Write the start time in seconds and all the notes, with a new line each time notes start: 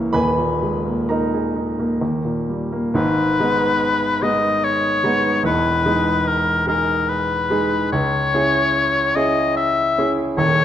Already playing: C#2 C#3 E3 A#3 C#5 A#5 C#6
0.13 D#1 D#2 B4 G#5 B5
0.38 A#2
0.63 G#3
0.86 A#3
1.09 D#4 A#4 D#5 A#5
1.33 G#4
1.56 D#4
1.79 A#3
2.01 D#2
2.25 A#2
2.49 G3
2.72 A#3
2.94 G#1 G#2 B4
3.40 G#3 B3 D#4
4.22 G#3 B3 D#4 D#5
4.64 C#5
5.04 G#3 B3 D#4
5.43 E1 E2 B4
5.86 G#3 D#4 G#4
6.27 A#4
6.67 G#3 D#4 G#4 A#4
7.09 B4
7.50 G#3 D#4 G#4
7.92 C#2 C#5
8.34 C#4 E4 G#4
9.15 C#4 E4 G#4 D#5
9.57 E5
9.98 C#4 E4 G#4
10.37 D#1 D#2 C#5